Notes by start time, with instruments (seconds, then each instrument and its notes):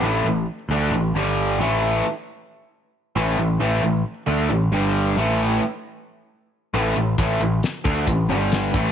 0.02 picked electric bass A1, overdriven electric guitar A2 E3 A3
0.24 picked electric bass A1, overdriven electric guitar A2 E3
0.69 picked electric bass D2, overdriven electric guitar D3 A3 D4
0.91 picked electric bass A1, overdriven electric guitar A2 E3
1.14 picked electric bass G1, overdriven electric guitar G2 D3 G3
1.59 picked electric bass A1, overdriven electric guitar A2 E3 A3
3.16 picked electric bass A1, overdriven electric guitar A2 E3 A3
3.38 picked electric bass A1, overdriven electric guitar A2 E3
3.60 picked electric bass A1, overdriven electric guitar A2 E3 A3
3.83 picked electric bass A1, overdriven electric guitar A2 E3
4.27 picked electric bass D2, overdriven electric guitar D3 A3 D4
4.50 picked electric bass A1, overdriven electric guitar A2 E3
4.72 picked electric bass G1, overdriven electric guitar G2 D3 G3
5.17 picked electric bass A1, overdriven electric guitar A2 E3 A3
6.74 picked electric bass A1, overdriven electric guitar A2 E3 A3
6.95 picked electric bass A1, overdriven electric guitar A2 E3
7.18 picked electric bass A1, overdriven electric guitar A2 E3 A3, kick, closed hi-hat
7.40 picked electric bass A1, overdriven electric guitar A2 E3, closed hi-hat
7.63 snare, closed hi-hat
7.85 picked electric bass D2, overdriven electric guitar D3 A3 D4, kick, closed hi-hat
8.07 picked electric bass A1, overdriven electric guitar A2 E3, kick, closed hi-hat
8.29 picked electric bass G1, overdriven electric guitar G2 D3 G3, closed hi-hat
8.52 snare, closed hi-hat
8.73 picked electric bass A1, overdriven electric guitar A2 E3 A3, kick, closed hi-hat